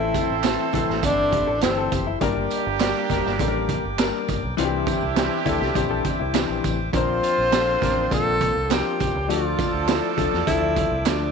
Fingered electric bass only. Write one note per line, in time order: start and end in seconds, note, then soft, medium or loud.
0.00 0.11 A1 loud
0.30 0.55 A1 medium
0.74 0.87 A#1 medium
0.90 1.02 A1 medium
1.04 1.41 G1 medium
1.48 1.65 A1 medium
1.63 1.88 G1 medium
1.92 2.17 F#1 medium
2.21 2.46 G1 medium
2.67 2.91 G1 loud
3.10 3.23 F1 medium
3.26 3.38 G1 loud
3.40 3.77 A1 medium
3.85 4.10 G1 medium
4.29 4.41 G1 medium
4.44 4.56 B1 medium
4.59 4.83 C2 loud
5.03 5.27 C2 medium
5.46 5.59 D2 medium
5.62 5.74 C2 medium
5.76 6.01 A#1 loud
6.21 6.45 C2 medium
6.49 6.62 A#1 medium
6.65 6.89 A1 medium
6.94 7.19 A#1 loud
7.38 7.75 A#1 medium
7.83 8.07 A1 medium
8.12 8.49 A#1 medium
8.56 8.81 C2 medium
9.01 9.13 A#1 medium
9.15 9.27 C#2 medium
9.29 9.54 D2 loud
9.74 9.99 D2 loud
10.18 10.30 D2 loud
10.33 10.46 E2 medium
10.47 10.85 D2 loud
10.92 11.04 C2 loud
11.07 11.31 D2 medium